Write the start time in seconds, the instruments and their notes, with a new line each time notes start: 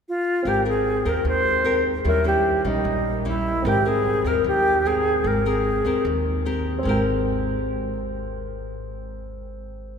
0.09 alto flute F4
0.43 upright bass G#1, nylon-string guitar G#3 C4 G4, grand piano C4
0.47 alto flute G4, grand piano A#4 G5, nylon-string guitar A#4
0.65 nylon-string guitar C4 A#4, alto flute G#4
1.05 upright bass D#2, nylon-string guitar C4 G4 A#4, alto flute A#4
1.25 upright bass D#2, nylon-string guitar D#3, alto flute C5
1.63 grand piano C4 G#4 A#4 G5, nylon-string guitar C4 G4 A#4
2.04 upright bass D#2, nylon-string guitar D#3 G3 C#4 E4, grand piano G4 C#5, alto flute A#4
2.08 grand piano E5
2.24 nylon-string guitar G3 C#4 E4, alto flute G4
2.65 upright bass A#1, nylon-string guitar G3 C#4, alto flute D#4
2.84 upright bass A#1, nylon-string guitar A#2
3.25 nylon-string guitar G3 C#4 E4, alto flute E4
3.62 upright bass G#1, nylon-string guitar G#3 C4, grand piano C4
3.66 nylon-string guitar G4 A#4, alto flute G4, grand piano A#4 G5
3.85 nylon-string guitar C4 A#4, alto flute G#4
4.24 upright bass D#2, nylon-string guitar C4 G4 A#4, alto flute A#4
4.44 upright bass D#2, nylon-string guitar D#3, alto flute G4
4.85 nylon-string guitar C4 A#4, alto flute G#4
5.24 upright bass G#1, nylon-string guitar G#3, alto flute A#4
5.46 nylon-string guitar C4 A#4, alto flute G#4
5.84 upright bass D#2, nylon-string guitar C4 G4 A#4
6.05 upright bass D#2, nylon-string guitar D#3
6.46 nylon-string guitar C4 G4 A#4
6.79 grand piano C4
6.83 upright bass G#1, nylon-string guitar G#3 C4, grand piano A#4
6.87 nylon-string guitar G4 A#4, grand piano G5